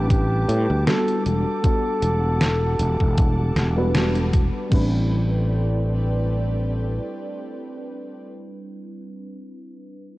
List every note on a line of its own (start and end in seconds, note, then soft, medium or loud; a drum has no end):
0.00 0.44 A1 medium
0.00 0.82 G3 medium
0.00 0.82 C4 medium
0.00 0.83 D4 medium
0.00 0.83 E4 medium
0.00 0.84 B4 medium
0.00 1.23 B4 medium
0.00 1.23 A5 medium
0.00 4.67 D6 medium
0.10 0.83 G4 loud
0.10 kick loud
0.10 closed hi-hat medium
0.48 0.66 A2 medium
0.48 closed hi-hat medium
0.70 0.84 D2 loud
0.86 1.59 G3 loud
0.86 1.59 B3 medium
0.86 1.60 D4 medium
0.86 1.60 F#4 medium
0.86 1.22 A4 loud
0.86 1.60 A4 loud
0.86 snare loud
0.86 closed hi-hat medium
1.08 closed hi-hat soft
1.25 1.43 E1 medium
1.25 4.68 G3 medium
1.25 3.91 A4 loud
1.25 4.68 F#5 medium
1.25 4.68 A5 medium
1.25 closed hi-hat medium
1.62 3.51 G3 medium
1.62 3.52 B3 medium
1.62 3.52 D4 medium
1.62 3.52 F#4 medium
1.62 3.53 A4 medium
1.62 kick loud
1.62 closed hi-hat medium
2.02 2.75 E1 loud
2.02 closed hi-hat medium
2.41 snare loud
2.41 closed hi-hat medium
2.79 2.97 E1 medium
2.79 closed hi-hat medium
3.00 3.52 E1 medium
3.00 kick medium
3.18 kick loud
3.18 closed hi-hat medium
3.56 4.49 E1 medium
3.56 snare medium
3.56 closed hi-hat medium
3.76 3.92 G3 medium
3.76 3.92 B3 medium
3.76 3.92 D4 medium
3.76 3.92 F#4 medium
3.76 3.92 B4 loud
3.94 4.67 G3 medium
3.94 4.67 B3 medium
3.94 4.67 D4 medium
3.94 4.67 F#4 medium
3.94 4.68 A4 loud
3.94 snare loud
3.94 closed hi-hat medium
4.15 closed hi-hat soft
4.33 kick loud
4.33 closed hi-hat medium
4.70 6.99 A1 medium
4.70 8.23 G3 medium
4.70 8.25 A3 medium
4.70 8.24 C4 medium
4.70 8.25 C4 medium
4.70 8.25 D4 medium
4.70 8.26 E4 medium
4.70 8.26 G4 medium
4.70 8.25 B4 medium
4.70 8.25 D5 medium
4.70 kick loud
4.70 crash medium
4.74 8.27 B4 medium